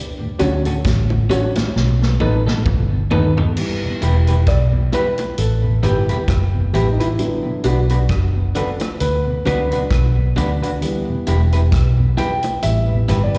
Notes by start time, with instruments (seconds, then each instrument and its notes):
0.20 tonewheel organ D2 A2
0.39 fingered electric bass D2, tonewheel organ D3 F#3 C#4, clean electric guitar C#4 F#4 A4, upright piano D4 F#4 C#5, closed hi-hat
0.65 tonewheel organ D2 A2, clean electric guitar C#4 F#4 A4, closed hi-hat
0.84 fingered electric bass A1, kick, snare, closed hi-hat
1.10 tonewheel organ D2 A2, high bongo
1.29 tonewheel organ D3 F#3 C#4, clean electric guitar C#4 F#4 A4, upright piano D4 F#4 C#5, closed hi-hat, low bongo
1.55 tonewheel organ D2 A2, snare, closed hi-hat, high bongo
1.76 fingered electric bass B1, snare
2.02 tonewheel organ B2, upright piano A4 B4, snare
2.20 fingered electric bass A1, tonewheel organ D#3 A3 B3, clean electric guitar B3 D#4 A4, upright piano D#4 A4 B4, high bongo
2.47 tonewheel organ B2, clean electric guitar B3 D#4 A4, snare
2.66 fingered electric bass G1, kick, mid tom, high bongo
2.93 tonewheel organ B2
3.11 fingered electric bass D#2, tonewheel organ D#3 A3 B3, clean electric guitar B3 D#4 A4, upright piano D#4 A4 B4, floor tom, low bongo
3.37 tonewheel organ B2, clean electric guitar B3 D#4 A4, floor tom
3.56 upright piano E3 G3 B3, crash
3.83 tonewheel organ E2 B2
4.01 fingered electric bass E1, tonewheel organ E3 G3 B3, clean electric guitar E4 G4 B4, closed hi-hat
4.27 tonewheel organ E2 B2, clean electric guitar E4 G4 B4, closed hi-hat
4.47 fingered electric bass B1, upright piano D5, kick, cross-stick, closed hi-hat
4.73 tonewheel organ E2 B2
4.92 tonewheel organ E3 G3 B3, clean electric guitar E4 G4 B4, upright piano B4, closed hi-hat, low bongo
5.18 closed hi-hat, high bongo
5.38 fingered electric bass A1, upright piano A4, closed hi-hat
5.64 tonewheel organ E2 B2
5.83 fingered electric bass G1, tonewheel organ E3 G3 B3, upright piano E3 G3 B3 G4, clean electric guitar E4 G4 B4, closed hi-hat, high bongo
6.09 tonewheel organ E2 B2, clean electric guitar E4 G4 B4, closed hi-hat
6.28 fingered electric bass F#1, kick, cross-stick, closed hi-hat, high bongo
6.55 tonewheel organ E2 B2
6.73 fingered electric bass A1, tonewheel organ E3 G3 B3, clean electric guitar E4 G4 B4, upright piano G4, closed hi-hat, low bongo
6.92 upright piano D#4
7.00 upright piano E4, clean electric guitar E4 G4 B4, closed hi-hat
7.18 upright piano D3 F#3 B3, closed hi-hat
7.45 tonewheel organ B2
7.64 fingered electric bass B1, tonewheel organ D3 F#3 B3, clean electric guitar D4 F#4 B4, upright piano F#4, closed hi-hat
7.89 tonewheel organ B2, clean electric guitar D4 F#4 B4, closed hi-hat
8.09 fingered electric bass F#1, kick, cross-stick, closed hi-hat
8.36 tonewheel organ B2
8.55 tonewheel organ D3 F#3 B3, clean electric guitar D4 F#4 B4, upright piano A4, closed hi-hat, low bongo
8.80 cross-stick, closed hi-hat, high bongo
9.00 fingered electric bass D2, upright piano B4, closed hi-hat
9.27 tonewheel organ B2
9.45 fingered electric bass C#2, upright piano D3 F#3 B3 B4, tonewheel organ D3 F#3 B3, clean electric guitar D4 F#4 B4, closed hi-hat, high bongo
9.71 tonewheel organ B2, clean electric guitar D4 F#4 B4, closed hi-hat
9.90 fingered electric bass B1, kick, cross-stick, closed hi-hat, high bongo
10.18 tonewheel organ B2
10.36 fingered electric bass D2, tonewheel organ D3 F#3 B3, clean electric guitar D4 F#4 B4, closed hi-hat, low bongo
10.63 clean electric guitar D4 F#4 B4, closed hi-hat
10.81 upright piano E3 G3 B3, closed hi-hat
11.09 tonewheel organ E2 B2
11.27 fingered electric bass E1, tonewheel organ E3 G3 B3, clean electric guitar E4 G4 B4, closed hi-hat
11.52 tonewheel organ E2 B2, clean electric guitar E4 G4 B4, closed hi-hat
11.72 fingered electric bass B1, kick, cross-stick, closed hi-hat
11.99 tonewheel organ E2 B2
12.17 tonewheel organ E3 G3 B3, clean electric guitar E4 G4 B4, upright piano G5, closed hi-hat, low bongo
12.43 closed hi-hat, high bongo
12.62 fingered electric bass A1, upright piano E3 G3 B3 E5, closed hi-hat
12.89 tonewheel organ E2 B2
13.08 fingered electric bass G1, tonewheel organ E3 G3 B3, clean electric guitar E4 G4 B4, closed hi-hat, high bongo
13.24 upright piano D5
13.34 tonewheel organ E2 B2, clean electric guitar B4, closed hi-hat